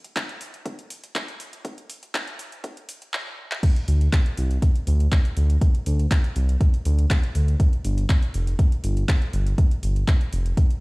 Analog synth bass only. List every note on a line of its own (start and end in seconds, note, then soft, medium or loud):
3.88 4.08 D2 loud
4.37 4.58 C2 medium
4.87 5.07 D2 loud
5.37 5.57 D2 medium
5.86 6.07 D2 loud
6.36 6.56 C2 medium
6.85 7.06 D2 loud
7.35 7.55 D2 medium
7.85 8.05 G1 loud
8.34 8.54 F1 medium
8.84 9.04 G1 loud
9.33 9.54 G1 medium
9.83 10.03 G1 loud
10.32 10.53 F1 medium